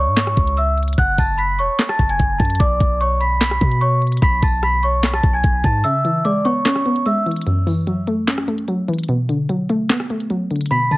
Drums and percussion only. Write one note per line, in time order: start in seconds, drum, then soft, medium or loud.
0.17 snare loud
0.17 clap medium
0.17 closed hi-hat medium
0.27 cross-stick loud
0.37 kick medium
0.37 closed hi-hat medium
0.47 closed hi-hat soft
0.57 closed hi-hat medium
0.78 closed hi-hat medium
0.83 closed hi-hat medium
0.88 closed hi-hat medium
0.93 closed hi-hat medium
0.98 kick loud
0.98 closed hi-hat medium
1.18 kick loud
1.18 open hi-hat medium
1.39 closed hi-hat medium
1.59 closed hi-hat medium
1.79 snare loud
1.79 clap medium
1.79 closed hi-hat medium
1.89 cross-stick loud
1.99 kick medium
1.99 closed hi-hat medium
2.09 closed hi-hat soft
2.19 kick medium
2.19 closed hi-hat medium
2.40 kick medium
2.40 closed hi-hat medium
2.45 closed hi-hat medium
2.50 closed hi-hat medium
2.55 closed hi-hat medium
2.60 kick loud
2.60 closed hi-hat medium
2.80 kick loud
2.80 closed hi-hat medium
3.01 closed hi-hat medium
3.21 closed hi-hat medium
3.41 snare loud
3.41 clap medium
3.41 closed hi-hat medium
3.51 cross-stick medium
3.61 kick medium
3.61 closed hi-hat medium
3.71 closed hi-hat soft
3.81 closed hi-hat medium
4.02 closed hi-hat medium
4.07 closed hi-hat medium
4.12 closed hi-hat medium
4.17 closed hi-hat medium
4.22 kick loud
4.22 closed hi-hat medium
4.43 kick loud
4.43 open hi-hat medium
4.63 cross-stick medium
4.63 closed hi-hat medium
4.83 closed hi-hat medium
5.03 snare loud
5.03 clap medium
5.03 closed hi-hat medium
5.13 cross-stick loud
5.23 kick medium
5.23 closed hi-hat medium
5.44 kick medium
5.44 closed hi-hat medium
5.64 kick medium
5.64 closed hi-hat medium
5.84 closed hi-hat medium
6.05 closed hi-hat medium
6.25 closed hi-hat medium
6.45 closed hi-hat medium
6.65 snare loud
6.65 clap medium
6.65 closed hi-hat medium
6.76 cross-stick medium
6.86 closed hi-hat medium
6.96 closed hi-hat soft
7.06 closed hi-hat medium
7.26 closed hi-hat medium
7.31 closed hi-hat medium
7.36 closed hi-hat medium
7.42 closed hi-hat medium
7.47 closed hi-hat medium
7.67 open hi-hat medium
7.87 closed hi-hat medium
8.07 closed hi-hat medium
8.28 snare loud
8.28 clap medium
8.28 closed hi-hat medium
8.38 cross-stick loud
8.48 closed hi-hat medium
8.58 closed hi-hat soft
8.68 closed hi-hat medium
8.88 closed hi-hat medium
8.93 closed hi-hat medium
8.98 closed hi-hat medium
9.03 closed hi-hat medium
9.09 closed hi-hat medium
9.29 closed hi-hat medium
9.49 closed hi-hat medium
9.69 closed hi-hat medium
9.90 snare loud
9.90 clap medium
9.90 closed hi-hat medium
10.00 cross-stick loud
10.10 closed hi-hat medium
10.20 closed hi-hat soft
10.30 closed hi-hat medium
10.51 closed hi-hat medium
10.56 closed hi-hat medium
10.61 closed hi-hat medium
10.66 closed hi-hat medium
10.71 closed hi-hat medium
10.91 open hi-hat medium